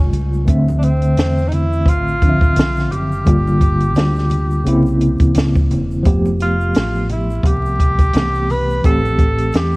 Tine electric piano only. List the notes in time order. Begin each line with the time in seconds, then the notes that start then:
Already playing: C#3 G3 A3 F4
0.45 D3 A3 C4 E5
2.21 D3 F3 C4 D4
2.29 E5
3.25 D3 G3 A#3
3.29 F4
4.64 C#3 A#3 C4
4.68 E4
6.03 F3 A3 B3 G4
8.14 E3 A3 B3 G4
8.82 E3 A3 C4 G4